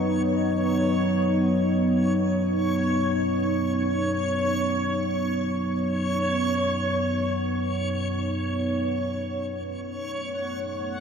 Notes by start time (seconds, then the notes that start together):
Already playing: F#2 F#3 B3 D#4 C#5
9.63 F#2 F#3 A3 F#5
10.75 F#4